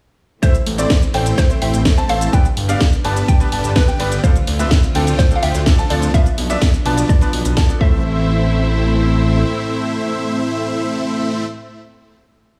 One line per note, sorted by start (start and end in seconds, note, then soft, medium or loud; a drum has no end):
0.42 2.31 E3 medium
0.42 0.53 A3 medium
0.42 2.31 A3 medium
0.42 0.55 A3 medium
0.42 0.54 C4 medium
0.42 0.55 C4 medium
0.42 2.31 C4 medium
0.42 0.55 E4 medium
0.42 0.54 E4 medium
0.42 0.55 C5 medium
0.42 1.37 C5 medium
0.42 0.54 C5 loud
0.42 0.55 E5 medium
0.42 0.55 E5 loud
0.42 kick loud
0.42 closed hi-hat medium
0.42 shaker medium
0.55 closed hi-hat soft
0.55 shaker soft
0.66 0.85 A1 loud
0.66 open hi-hat loud
0.78 0.89 A3 medium
0.78 0.90 A3 loud
0.78 0.89 C4 medium
0.78 0.90 C4 medium
0.78 0.90 E4 medium
0.78 0.90 C5 medium
0.78 0.90 D5 loud
0.78 0.90 D5 medium
0.78 closed hi-hat medium
0.78 shaker medium
0.90 kick loud
0.90 snare loud
0.90 closed hi-hat medium
0.90 shaker medium
1.02 closed hi-hat soft
1.02 shaker soft
1.13 1.33 A1 loud
1.13 1.31 A3 medium
1.13 1.59 A3 loud
1.13 1.32 C4 medium
1.13 1.59 C4 medium
1.13 1.59 E4 medium
1.13 1.32 E4 medium
1.13 1.59 C5 medium
1.13 1.32 C5 loud
1.13 1.59 G5 loud
1.13 open hi-hat loud
1.26 closed hi-hat medium
1.26 shaker medium
1.38 1.49 C5 loud
1.38 kick loud
1.38 snare medium
1.38 closed hi-hat medium
1.38 shaker medium
1.49 1.82 A3 medium
1.49 1.83 C4 medium
1.49 1.83 E4 medium
1.49 1.83 C5 medium
1.49 closed hi-hat soft
1.49 shaker soft
1.62 1.71 A1 medium
1.62 1.81 A3 medium
1.62 1.81 C4 medium
1.62 1.81 E4 medium
1.62 1.81 C5 medium
1.62 2.11 E5 loud
1.62 1.81 G5 medium
1.62 open hi-hat loud
1.74 1.92 A1 medium
1.74 closed hi-hat medium
1.74 shaker medium
1.85 1.96 A3 medium
1.85 1.97 C4 medium
1.85 1.97 E4 medium
1.85 1.97 C5 medium
1.85 kick loud
1.85 snare loud
1.85 closed hi-hat medium
1.85 shaker medium
1.97 2.30 A3 loud
1.97 2.30 C4 loud
1.97 2.30 E4 loud
1.97 2.30 C5 loud
1.97 2.30 A5 loud
1.97 closed hi-hat soft
1.97 shaker soft
2.09 2.28 A1 medium
2.09 2.30 A3 loud
2.09 2.30 C4 medium
2.09 2.30 E4 medium
2.09 2.31 C5 loud
2.09 2.34 F5 loud
2.09 open hi-hat loud
2.21 closed hi-hat medium
2.21 shaker medium
2.32 6.10 D3 medium
2.32 2.44 G3 medium
2.32 4.22 G3 medium
2.32 2.44 B3 medium
2.32 4.22 B3 medium
2.32 2.45 B3 medium
2.32 2.45 D4 medium
2.32 2.44 D4 medium
2.32 2.45 G4 medium
2.32 2.44 B4 loud
2.32 2.45 D5 medium
2.32 2.45 G5 medium
2.32 3.27 G5 loud
2.32 kick loud
2.32 closed hi-hat medium
2.32 shaker medium
2.45 closed hi-hat soft
2.45 shaker soft
2.57 2.76 G1 loud
2.57 open hi-hat loud
2.68 2.80 G3 medium
2.68 2.80 B3 medium
2.68 2.81 B3 loud
2.68 2.81 D4 medium
2.68 2.80 D4 medium
2.68 2.81 G4 medium
2.68 2.81 D5 medium
2.68 2.80 D5 loud
2.68 2.81 F5 loud
2.68 closed hi-hat medium
2.68 shaker medium
2.81 kick loud
2.81 snare loud
2.81 closed hi-hat medium
2.81 shaker medium
2.93 closed hi-hat soft
2.93 shaker soft
3.04 3.23 G1 loud
3.04 3.22 G3 medium
3.04 3.22 B3 medium
3.04 3.49 B3 loud
3.04 3.49 D4 medium
3.04 3.22 D4 medium
3.04 3.49 G4 medium
3.04 3.23 B4 loud
3.04 3.49 D5 medium
3.04 3.49 A5 loud
3.04 open hi-hat loud
3.16 closed hi-hat medium
3.16 shaker medium
3.28 3.77 G5 loud
3.28 kick loud
3.28 closed hi-hat medium
3.28 shaker medium
3.40 3.73 G3 medium
3.40 3.73 B3 medium
3.40 3.73 D4 medium
3.40 3.73 B4 loud
3.40 closed hi-hat soft
3.40 shaker soft
3.52 3.62 G1 medium
3.52 3.71 B3 medium
3.52 3.71 D4 medium
3.52 3.71 G4 medium
3.52 3.71 D5 medium
3.52 3.71 A5 medium
3.52 open hi-hat loud
3.64 3.83 G1 medium
3.64 closed hi-hat medium
3.64 shaker medium
3.75 3.87 G3 medium
3.75 3.87 B3 medium
3.75 3.87 D4 medium
3.75 4.25 B4 medium
3.75 3.87 B4 medium
3.75 kick loud
3.75 snare loud
3.75 closed hi-hat medium
3.75 shaker medium
3.88 4.21 B3 loud
3.88 4.21 D4 loud
3.88 4.21 G4 loud
3.88 4.21 D5 medium
3.88 4.21 G5 loud
3.88 closed hi-hat soft
3.88 shaker soft
3.99 4.18 G1 medium
3.99 4.20 G3 loud
3.99 4.21 B3 medium
3.99 4.21 D4 medium
3.99 4.21 B4 loud
3.99 open hi-hat loud
4.12 closed hi-hat medium
4.12 shaker medium
4.23 4.34 F3 medium
4.23 4.36 A3 medium
4.23 6.12 A3 medium
4.23 4.35 C4 medium
4.23 6.12 C4 medium
4.23 4.36 D4 medium
4.23 4.35 D4 medium
4.23 4.36 F4 medium
4.23 6.12 F4 loud
4.23 4.35 A4 loud
4.23 4.36 C5 medium
4.23 5.18 C5 loud
4.23 4.36 F5 medium
4.23 4.36 F5 loud
4.23 kick loud
4.23 closed hi-hat medium
4.23 shaker medium
4.35 closed hi-hat soft
4.35 shaker soft
4.47 4.66 D2 loud
4.47 open hi-hat loud
4.59 4.70 F3 medium
4.59 4.71 A3 medium
4.59 4.70 C4 medium
4.59 4.71 D4 medium
4.59 4.71 F4 medium
4.59 4.71 B4 loud
4.59 4.71 C5 medium
4.59 4.71 E5 loud
4.59 closed hi-hat soft
4.59 shaker medium
4.71 kick loud
4.71 snare loud
4.71 closed hi-hat medium
4.71 shaker medium
4.83 closed hi-hat soft
4.83 shaker soft
4.94 5.14 D2 loud
4.94 5.12 F3 medium
4.94 5.40 A3 loud
4.94 5.13 C4 medium
4.94 5.40 D4 medium
4.94 5.13 D4 medium
4.94 5.40 F4 medium
4.94 5.13 A4 loud
4.94 5.40 C5 medium
4.94 5.40 G5 loud
4.94 open hi-hat loud
5.07 closed hi-hat medium
5.07 shaker medium
5.19 5.36 C5 loud
5.19 kick loud
5.19 snare medium
5.19 closed hi-hat medium
5.19 shaker medium
5.30 5.63 F3 medium
5.30 5.64 C4 medium
5.30 5.64 D4 medium
5.30 5.64 A4 medium
5.30 closed hi-hat soft
5.30 shaker soft
5.36 5.43 F5 medium
5.43 5.52 D2 medium
5.43 5.62 A3 medium
5.43 5.62 D4 medium
5.43 5.62 F4 medium
5.43 5.62 C5 medium
5.43 5.92 E5 loud
5.43 5.62 G5 medium
5.43 open hi-hat loud
5.55 5.73 D2 medium
5.55 closed hi-hat medium
5.55 shaker medium
5.66 5.77 F3 medium
5.66 5.77 C4 medium
5.66 5.78 D4 medium
5.66 5.78 A4 medium
5.66 kick loud
5.66 snare loud
5.66 closed hi-hat soft
5.66 shaker medium
5.78 6.11 A3 loud
5.78 6.11 D4 loud
5.78 6.11 F4 loud
5.78 6.11 C5 loud
5.78 6.11 A5 loud
5.78 closed hi-hat soft
5.78 shaker soft
5.90 6.09 D2 medium
5.90 6.11 F3 loud
5.90 6.11 C4 medium
5.90 6.11 D4 medium
5.90 6.11 A4 loud
5.90 6.15 D5 loud
5.90 open hi-hat loud
6.02 closed hi-hat medium
6.02 shaker medium
6.13 6.25 F3 medium
6.13 7.79 F3 medium
6.13 6.25 B3 medium
6.13 7.79 B3 medium
6.13 7.79 D4 loud
6.13 6.26 D4 medium
6.13 6.25 D4 medium
6.13 6.25 B4 loud
6.13 6.26 D5 medium
6.13 7.12 E5 loud
6.13 6.26 F5 loud
6.13 kick loud
6.13 closed hi-hat soft
6.13 shaker medium
6.26 closed hi-hat soft
6.26 shaker soft
6.38 6.56 B1 loud
6.38 open hi-hat loud
6.49 6.61 F3 medium
6.49 6.61 B3 medium
6.49 6.62 B3 medium
6.49 6.62 D4 medium
6.49 6.61 D4 medium
6.49 6.62 F4 medium
6.49 6.62 D5 medium
6.49 6.61 D5 loud
6.49 6.62 E5 loud
6.49 closed hi-hat soft
6.49 shaker medium
6.62 kick loud
6.62 snare loud
6.62 closed hi-hat soft
6.62 shaker medium
6.74 closed hi-hat soft
6.74 shaker soft
6.85 7.04 B1 medium
6.85 7.03 F3 medium
6.85 7.03 B3 medium
6.85 7.30 B3 loud
6.85 7.30 D4 medium
6.85 7.03 D4 medium
6.85 7.30 F4 medium
6.85 7.04 B4 loud
6.85 7.30 D5 medium
6.85 7.30 A5 loud
6.85 open hi-hat loud
6.97 closed hi-hat soft
6.97 shaker medium
7.09 7.77 D5 medium
7.09 kick loud
7.09 closed hi-hat soft
7.09 shaker medium
7.21 7.54 F3 medium
7.21 7.54 B3 medium
7.21 7.54 D4 medium
7.21 7.54 B4 medium
7.21 closed hi-hat soft
7.21 shaker soft
7.33 7.42 B1 medium
7.33 open hi-hat loud
7.45 7.64 B1 medium
7.45 closed hi-hat medium
7.45 shaker medium
7.57 7.69 B3 medium
7.57 7.69 D4 medium
7.57 7.69 F4 medium
7.57 7.69 D5 medium
7.57 7.69 A5 medium
7.57 kick loud
7.57 snare loud
7.57 closed hi-hat medium
7.57 shaker medium
7.68 7.80 F3 medium
7.68 7.81 B3 medium
7.68 7.81 D4 medium
7.68 7.81 A4 medium
7.68 closed hi-hat soft
7.68 shaker soft
7.79 9.43 A1 medium
7.79 11.45 A2 medium
7.79 11.44 A3 medium
7.79 11.45 A3 medium
7.79 11.45 C4 medium
7.79 11.45 E4 medium
7.79 11.46 E4 medium
7.79 11.45 C5 medium
7.79 11.47 C5 loud
7.79 11.45 E5 medium
7.79 11.46 E5 medium
7.79 kick loud